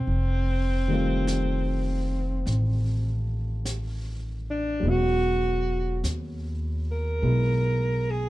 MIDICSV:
0, 0, Header, 1, 5, 480
1, 0, Start_track
1, 0, Tempo, 1195219
1, 29, Time_signature, 4, 2, 24, 8
1, 3329, End_track
2, 0, Start_track
2, 0, Title_t, "Alto saxophone"
2, 0, Program_c, 0, 65
2, 0, Note_on_c, 0, 60, 77
2, 1310, Note_off_c, 0, 60, 0
2, 1809, Note_on_c, 0, 62, 74
2, 1964, Note_on_c, 0, 66, 93
2, 1970, Note_off_c, 0, 62, 0
2, 2434, Note_off_c, 0, 66, 0
2, 2777, Note_on_c, 0, 70, 86
2, 3254, Note_on_c, 0, 68, 84
2, 3260, Note_off_c, 0, 70, 0
2, 3329, Note_off_c, 0, 68, 0
2, 3329, End_track
3, 0, Start_track
3, 0, Title_t, "Grand piano"
3, 0, Program_c, 1, 0
3, 0, Control_c, 1, 64, 127
3, 0, Note_on_c, 1, 65, 47
3, 34, Control_c, 1, 64, 0
3, 43, Note_off_c, 1, 65, 0
3, 99, Control_c, 1, 64, 127
3, 354, Note_on_c, 1, 51, 40
3, 356, Note_on_c, 1, 55, 37
3, 363, Note_on_c, 1, 57, 39
3, 368, Note_on_c, 1, 60, 37
3, 375, Note_on_c, 1, 65, 46
3, 1927, Note_on_c, 1, 54, 40
3, 1936, Note_on_c, 1, 56, 38
3, 1943, Note_off_c, 1, 51, 0
3, 1944, Note_off_c, 1, 55, 0
3, 1947, Note_off_c, 1, 57, 0
3, 1949, Note_on_c, 1, 59, 40
3, 1950, Note_off_c, 1, 60, 0
3, 1950, Control_c, 1, 64, 0
3, 1953, Note_off_c, 1, 65, 0
3, 1960, Note_on_c, 1, 61, 37
3, 1968, Note_on_c, 1, 66, 46
3, 2032, Control_c, 1, 64, 127
3, 2896, Note_off_c, 1, 56, 0
3, 2900, Note_off_c, 1, 59, 0
3, 2902, Note_on_c, 1, 56, 38
3, 2906, Note_on_c, 1, 59, 30
3, 2913, Note_on_c, 1, 64, 37
3, 3329, Note_off_c, 1, 54, 0
3, 3329, Note_off_c, 1, 56, 0
3, 3329, Note_off_c, 1, 59, 0
3, 3329, Note_off_c, 1, 61, 0
3, 3329, Note_off_c, 1, 64, 0
3, 3329, Note_off_c, 1, 66, 0
3, 3329, End_track
4, 0, Start_track
4, 0, Title_t, "Upright bass"
4, 0, Program_c, 2, 32
4, 29, Note_on_c, 2, 29, 65
4, 972, Note_off_c, 2, 29, 0
4, 986, Note_on_c, 2, 33, 68
4, 1928, Note_off_c, 2, 33, 0
4, 1940, Note_on_c, 2, 28, 65
4, 2407, Note_off_c, 2, 28, 0
4, 2424, Note_on_c, 2, 39, 68
4, 2889, Note_off_c, 2, 39, 0
4, 2901, Note_on_c, 2, 35, 69
4, 3329, Note_off_c, 2, 35, 0
4, 3329, End_track
5, 0, Start_track
5, 0, Title_t, "Drums"
5, 31, Note_on_c, 9, 25, 34
5, 511, Note_off_c, 9, 25, 0
5, 511, Note_on_c, 9, 25, 36
5, 511, Note_on_c, 9, 38, 37
5, 511, Note_on_c, 9, 44, 40
5, 552, Note_off_c, 9, 38, 0
5, 552, Note_off_c, 9, 44, 0
5, 990, Note_off_c, 9, 25, 0
5, 990, Note_on_c, 9, 25, 29
5, 990, Note_on_c, 9, 38, 26
5, 1030, Note_off_c, 9, 38, 0
5, 1467, Note_off_c, 9, 25, 0
5, 1467, Note_on_c, 9, 25, 34
5, 1467, Note_on_c, 9, 38, 40
5, 1467, Note_on_c, 9, 44, 49
5, 1508, Note_off_c, 9, 38, 0
5, 1508, Note_off_c, 9, 44, 0
5, 1947, Note_off_c, 9, 25, 0
5, 1947, Note_on_c, 9, 25, 36
5, 2425, Note_off_c, 9, 25, 0
5, 2425, Note_on_c, 9, 25, 26
5, 2425, Note_on_c, 9, 38, 36
5, 2425, Note_on_c, 9, 44, 49
5, 2465, Note_off_c, 9, 38, 0
5, 2465, Note_off_c, 9, 44, 0
5, 2904, Note_off_c, 9, 25, 0
5, 2904, Note_on_c, 9, 25, 33
5, 3329, Note_off_c, 9, 25, 0
5, 3329, End_track
0, 0, End_of_file